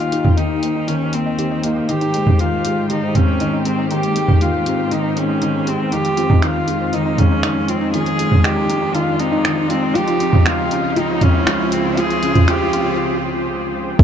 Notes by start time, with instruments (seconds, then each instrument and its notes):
Already playing: string section D#2 D#3 G4 C5, felt piano D#3 A#3 D#4, cello F4, riser
0.00 synth arpeggio sound D#5
0.12 felt piano D#4, synth arpeggio sound G4, closed hi-hat
0.25 synth arpeggio sound D#5, mid tom
0.37 felt piano D#3, cello D#4, synth arpeggio sound G5, closed hi-hat
0.51 synth arpeggio sound D#4
0.63 felt piano A#3, synth arpeggio sound D#4, closed hi-hat
0.76 synth arpeggio sound D#4
0.87 felt piano D#3, cello C#4, synth arpeggio sound D#4, closed hi-hat
1.13 felt piano A#3, cello C4, synth arpeggio sound G4, closed hi-hat
1.26 synth arpeggio sound D#5
1.39 felt piano D#3, synth arpeggio sound G4, closed hi-hat
1.51 synth arpeggio sound D#5
1.64 cello A#3, felt piano D#4, synth arpeggio sound G4, closed hi-hat
1.76 synth arpeggio sound D#5
1.89 string section G#2 G4, felt piano D#3, cello G4, synth arpeggio sound D#5, closed hi-hat
2.01 synth arpeggio sound D#4, closed hi-hat
2.14 felt piano G#3, synth arpeggio sound D#4, closed hi-hat
2.27 synth arpeggio sound D#4, mid tom
2.39 felt piano D#3, synth arpeggio sound D#4, cello F4, closed hi-hat
2.65 felt piano G#3, synth arpeggio sound G4, closed hi-hat
2.78 synth arpeggio sound C5
2.90 felt piano D#3, cello D#4, synth arpeggio sound G4, closed hi-hat
3.03 synth arpeggio sound C5
3.15 felt piano C4, cello C#4, synth arpeggio sound G4, closed hi-hat, mid tom
3.28 synth arpeggio sound C5
3.40 felt piano D#3, synth arpeggio sound D#5, closed hi-hat
3.53 synth arpeggio sound D#4
3.65 felt piano G#3, cello C4, synth arpeggio sound D#4, closed hi-hat
3.79 synth arpeggio sound D#4
3.90 felt piano D#3, synth arpeggio sound D#4, cello G4, closed hi-hat
4.03 closed hi-hat
4.16 felt piano G#3, synth arpeggio sound G4, closed hi-hat
4.28 synth arpeggio sound C5, mid tom
4.41 felt piano D#3, cello F4, synth arpeggio sound G4, closed hi-hat
4.54 synth arpeggio sound C5
4.66 felt piano C4, synth arpeggio sound G4, closed hi-hat
4.79 synth arpeggio sound C5
4.91 felt piano D#3, cello D#4, synth arpeggio sound D#5, closed hi-hat
5.04 synth arpeggio sound D#4
5.16 felt piano G#3, cello C#4, synth arpeggio sound D#4, closed hi-hat
5.29 synth arpeggio sound D#4
5.42 felt piano D#3, synth arpeggio sound D#4, closed hi-hat
5.67 felt piano G#3, cello C4, synth arpeggio sound G4, closed hi-hat
5.80 synth arpeggio sound C5
5.92 string section F2 G#3 F4, felt piano D#3, synth arpeggio sound D#4, cello G4, closed hi-hat
6.05 closed hi-hat
6.17 felt piano C4, synth arpeggio sound F4, closed hi-hat
6.30 synth arpeggio sound D#4, mid tom
6.42 felt piano D#3, synth arpeggio sound F4, cello F4, finger snap, closed hi-hat
6.56 synth arpeggio sound C5
6.68 felt piano G#3, synth arpeggio sound F4, closed hi-hat
6.81 synth arpeggio sound C5
6.93 felt piano D#3, cello D#4, synth arpeggio sound D#5, closed hi-hat
7.06 synth arpeggio sound D#4
7.18 felt piano G#3, cello C#4, synth arpeggio sound D#4, closed hi-hat, mid tom
7.31 synth arpeggio sound D#4
7.43 felt piano D#3, synth arpeggio sound D#4, finger snap, closed hi-hat
7.68 felt piano C4, cello C4, synth arpeggio sound F4, closed hi-hat
7.81 synth arpeggio sound D#4
7.93 felt piano D#3, synth arpeggio sound F4, cello G#4, closed hi-hat
8.06 synth arpeggio sound C5, closed hi-hat
8.19 felt piano G#3, synth arpeggio sound F4, closed hi-hat
8.31 synth arpeggio sound C5, mid tom
8.44 felt piano D#3, cello G4, synth arpeggio sound D#5, finger snap, closed hi-hat
8.56 synth arpeggio sound D#4
8.69 felt piano G#3, synth arpeggio sound D#4, closed hi-hat
8.82 synth arpeggio sound D#4
8.94 felt piano D#3, synth arpeggio sound D#4, cello F4, closed hi-hat
9.19 felt piano C4, cello D#4, synth arpeggio sound F4, closed hi-hat
9.32 synth arpeggio sound D#4
9.45 felt piano D#3, finger snap, closed hi-hat
9.57 synth arpeggio sound C5
9.70 felt piano G#3, cello C4, synth arpeggio sound F4, closed hi-hat
9.83 synth arpeggio sound C5
9.95 string section C#2 C#3 C5, felt piano F3, cello G4, synth arpeggio sound F5, closed hi-hat
10.08 synth arpeggio sound F4, closed hi-hat
10.20 felt piano C4, synth arpeggio sound F4, closed hi-hat
10.33 synth arpeggio sound F4, mid tom
10.46 felt piano F3, synth arpeggio sound F4, cello F4, finger snap, closed hi-hat
10.71 felt piano C#4, synth arpeggio sound G#4, closed hi-hat
10.84 synth arpeggio sound F4
10.96 felt piano F3, cello D#4, synth arpeggio sound G#4, closed hi-hat
11.10 synth arpeggio sound C#5
11.21 felt piano C4, cello C#4, synth arpeggio sound G#4, closed hi-hat, mid tom
11.35 synth arpeggio sound C#5
11.47 felt piano F3, synth arpeggio sound F5, finger snap, closed hi-hat
11.60 synth arpeggio sound F4
11.72 felt piano C4, cello C4, synth arpeggio sound F4, closed hi-hat
11.86 synth arpeggio sound F4
11.97 felt piano F3, synth arpeggio sound F4, cello G#4, closed hi-hat
12.11 closed hi-hat
12.23 felt piano C#4, synth arpeggio sound G#4, closed hi-hat
12.35 synth arpeggio sound F4, closed hi-hat, mid tom
12.48 felt piano F3, cello G4, synth arpeggio sound G#4, finger snap, closed hi-hat
12.60 synth arpeggio sound C#5
12.73 felt piano C4, synth arpeggio sound G#4, closed hi-hat
12.86 synth arpeggio sound C#5
13.99 analog synth bass D#2, string section D#3 D#4 G4 A#4, felt piano D#3, kick, closed hi-hat, crash